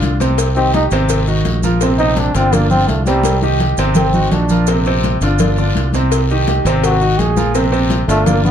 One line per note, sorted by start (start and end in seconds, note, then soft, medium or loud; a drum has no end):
0.00 0.86 C2 medium
0.00 0.14 D3 medium
0.00 0.14 D4 medium
0.00 0.15 F4 medium
0.00 cowbell medium
0.00 high conga medium
0.00 short guiro medium
0.00 maracas soft
0.20 0.50 C3 medium
0.20 0.50 C4 medium
0.20 0.50 C5 medium
0.20 high conga medium
0.20 short guiro medium
0.20 maracas medium
0.38 cowbell loud
0.38 high conga soft
0.38 long guiro medium
0.38 maracas loud
0.55 0.71 D#3 medium
0.55 0.72 C4 medium
0.55 0.71 D#4 medium
0.55 0.71 G4 medium
0.55 high conga soft
0.55 maracas soft
0.74 0.89 D#3 medium
0.74 0.85 D#4 medium
0.74 0.89 D#4 medium
0.74 0.90 G4 medium
0.74 cowbell medium
0.74 high conga loud
0.74 short guiro medium
0.74 maracas soft
0.91 1.42 G#1 medium
0.91 1.22 C3 loud
0.91 1.22 C4 loud
0.91 1.22 C5 loud
0.91 cowbell medium
0.91 short guiro medium
0.91 maracas medium
1.09 cowbell loud
1.09 high conga soft
1.09 long guiro medium
1.09 maracas medium
1.27 1.57 D#3 medium
1.27 1.57 D#4 medium
1.27 1.57 F#4 medium
1.27 high conga soft
1.27 maracas soft
1.45 2.29 A#1 medium
1.45 cowbell medium
1.45 high conga medium
1.45 short guiro medium
1.45 maracas soft
1.63 1.78 F3 medium
1.63 1.79 F4 medium
1.63 1.79 A#4 medium
1.63 high conga medium
1.63 short guiro medium
1.63 maracas medium
1.81 1.96 C3 medium
1.81 1.97 C4 medium
1.81 1.97 C5 medium
1.81 cowbell medium
1.81 high conga soft
1.81 long guiro medium
1.81 maracas medium
1.99 2.29 C3 medium
1.99 2.29 C4 medium
1.99 2.20 D#4 loud
1.99 2.29 C5 medium
1.99 high conga soft
1.99 maracas soft
2.17 2.37 D4 medium
2.17 cowbell medium
2.17 high conga loud
2.17 short guiro medium
2.17 maracas soft
2.35 2.85 G1 loud
2.35 2.50 D3 medium
2.35 2.55 C4 loud
2.35 2.50 D4 medium
2.35 2.50 F4 medium
2.35 cowbell medium
2.35 high conga soft
2.35 short guiro medium
2.35 maracas medium
2.53 2.68 D3 medium
2.53 2.70 A#3 medium
2.53 2.68 D4 medium
2.53 2.68 F4 medium
2.53 cowbell loud
2.53 high conga soft
2.53 low conga medium
2.53 long guiro medium
2.53 maracas medium
2.70 3.00 D3 medium
2.70 2.89 C4 loud
2.70 3.00 D4 medium
2.70 3.00 F4 medium
2.70 high conga soft
2.70 low conga medium
2.70 maracas soft
2.88 3.72 C2 medium
2.88 3.06 A3 medium
2.88 cowbell medium
2.88 high conga medium
2.88 short guiro medium
2.88 maracas soft
3.06 3.36 C3 medium
3.06 3.40 G3 medium
3.06 3.36 C4 medium
3.06 3.37 C5 medium
3.06 high conga medium
3.06 short guiro medium
3.06 maracas medium
3.23 cowbell loud
3.23 high conga loud
3.23 long guiro medium
3.23 maracas medium
3.42 3.57 D#3 medium
3.42 3.57 D#4 medium
3.42 3.58 G4 medium
3.42 high conga medium
3.42 maracas soft
3.59 3.75 D#3 medium
3.59 3.75 D#4 medium
3.59 3.75 G4 medium
3.59 cowbell medium
3.59 low conga medium
3.59 short guiro medium
3.59 maracas soft
3.77 4.28 G#1 medium
3.77 4.08 C3 loud
3.77 4.08 C4 loud
3.77 4.08 C5 medium
3.77 cowbell medium
3.77 short guiro medium
3.77 maracas medium
3.95 4.34 C4 medium
3.95 cowbell loud
3.95 low conga loud
3.95 long guiro medium
3.95 maracas medium
4.13 4.43 D#3 medium
4.13 4.43 D#4 medium
4.13 4.44 F#4 medium
4.13 low conga medium
4.13 maracas soft
4.31 5.15 A#1 medium
4.31 4.68 D4 medium
4.31 cowbell medium
4.31 low conga loud
4.31 short guiro medium
4.31 maracas soft
4.49 4.65 F3 medium
4.49 4.65 F4 medium
4.49 4.65 A#4 medium
4.49 low conga medium
4.49 short guiro medium
4.49 maracas medium
4.67 4.83 C3 medium
4.67 4.83 C4 medium
4.67 4.83 C5 medium
4.67 cowbell loud
4.67 high conga soft
4.67 long guiro medium
4.67 maracas loud
4.85 5.15 C3 medium
4.85 5.16 C4 loud
4.85 5.16 C5 medium
4.85 high conga soft
4.85 maracas soft
5.03 cowbell medium
5.03 high conga loud
5.03 short guiro medium
5.03 maracas soft
5.21 5.71 G1 medium
5.21 5.37 D3 medium
5.21 5.37 D4 medium
5.21 5.37 F4 medium
5.21 cowbell medium
5.21 high conga soft
5.21 short guiro medium
5.21 maracas medium
5.39 5.55 D3 medium
5.39 5.55 D4 medium
5.39 5.55 F4 medium
5.39 cowbell loud
5.39 high conga soft
5.39 low conga loud
5.39 long guiro medium
5.39 maracas medium
5.57 5.87 D3 medium
5.57 5.87 D4 medium
5.57 5.87 F4 medium
5.57 high conga soft
5.57 low conga medium
5.57 maracas soft
5.75 6.59 C2 medium
5.75 cowbell medium
5.75 high conga medium
5.75 short guiro medium
5.75 maracas soft
5.93 6.23 C3 medium
5.93 6.23 C4 medium
5.93 6.24 C5 medium
5.93 high conga medium
5.93 short guiro medium
5.93 maracas medium
6.11 cowbell loud
6.11 high conga soft
6.11 long guiro medium
6.11 maracas medium
6.30 6.45 D#3 medium
6.30 6.45 D#4 medium
6.30 6.45 G4 medium
6.30 high conga soft
6.30 maracas soft
6.48 6.62 D#3 medium
6.48 6.63 D#4 medium
6.48 6.63 G4 medium
6.48 cowbell medium
6.48 high conga loud
6.48 short guiro medium
6.48 maracas soft
6.65 7.15 G#1 loud
6.65 6.95 C3 loud
6.65 6.95 C4 loud
6.65 6.95 C5 medium
6.65 cowbell medium
6.65 short guiro medium
6.65 maracas medium
6.83 7.21 F#4 medium
6.83 cowbell loud
6.83 high conga soft
6.83 long guiro medium
6.83 maracas medium
7.01 7.30 D#3 medium
7.01 7.30 D#4 medium
7.01 7.31 F#4 medium
7.01 high conga soft
7.01 maracas soft
7.19 8.02 A#1 medium
7.19 7.55 G#4 medium
7.19 cowbell medium
7.19 high conga medium
7.19 short guiro medium
7.19 maracas soft
7.37 7.51 F3 medium
7.37 7.52 F4 medium
7.37 7.52 A#4 medium
7.37 high conga medium
7.37 short guiro medium
7.37 maracas medium
7.54 7.69 C3 medium
7.54 7.69 C4 medium
7.54 7.70 C5 medium
7.54 cowbell loud
7.54 high conga soft
7.54 long guiro medium
7.54 maracas loud
7.72 8.01 C3 medium
7.72 8.02 C4 loud
7.72 8.02 C5 medium
7.72 high conga soft
7.72 maracas soft
7.90 cowbell medium
7.90 high conga loud
7.90 short guiro medium
7.90 maracas soft
8.08 8.51 G1 loud
8.08 8.23 D3 medium
8.08 8.28 A3 loud
8.08 8.23 D4 medium
8.08 8.23 F4 medium
8.08 cowbell medium
8.08 high conga soft
8.08 short guiro medium
8.08 maracas medium
8.26 8.41 D3 medium
8.26 8.44 A#3 medium
8.26 8.41 D4 medium
8.26 8.41 F4 medium
8.26 cowbell loud
8.26 high conga soft
8.26 low conga loud
8.26 long guiro medium
8.26 maracas medium
8.44 8.51 D3 medium
8.44 8.51 B3 medium
8.44 8.51 D4 medium
8.44 8.51 F4 medium
8.44 high conga soft
8.44 low conga medium
8.44 maracas soft